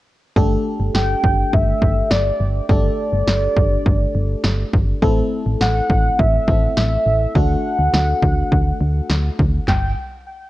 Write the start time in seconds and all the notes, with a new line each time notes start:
0.36 G1 A3 D4 G4 A4, kick
0.80 G1
0.94 G1 G5, snare
1.24 G1, kick
1.53 G1 E5, kick
1.82 G1, kick
2.11 G1 D5, snare
2.40 G1
2.69 G1 A3 D4 G4 A4 D5, kick
3.13 G1
3.27 G1, snare
3.57 G1, kick
3.86 G1, kick
4.15 G1
4.44 G1, snare
4.73 G1, kick
5.02 A1 A3 C4 E4 A4, kick
5.46 A1
5.61 A1 F#5, snare
5.89 A1, kick
6.19 A1 E5, kick
6.48 A1 A3 C4 E4 A4, kick
6.77 A1 E5, snare
7.06 A1
7.35 D2 A3 D4 F#4 A4 F#5, kick
7.79 D2
7.93 D2, snare
8.22 D2, kick
8.52 D2, kick
8.81 D2
9.10 D2, snare
9.39 D2, kick
9.68 G1 G5, snare, clap, floor tom